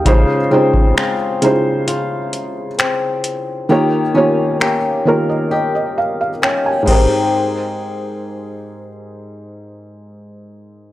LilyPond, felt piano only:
\new Staff \with { instrumentName = "Felt piano" } { \time 4/4 \key aes \major \tempo 4 = 66 << { <g' ees''>16 r2. r8. | r4. des''16 ees''16 ees''16 ees''16 f''16 f''16 g''16 aes''16 r8 | r1 | } \\ { <des aes ees' f' c''>8 <des aes ees' f' c''>8 r8 <des aes ees' fes' f' c''>4. r4 | <ees bes f' g' des''>8 <ees bes f' g' des''>8 r8 <ees bes f' g' bes'>4. r8 <aes, aes g' bes' c''>8~ | <aes, aes g' bes' c''>1 | } >> }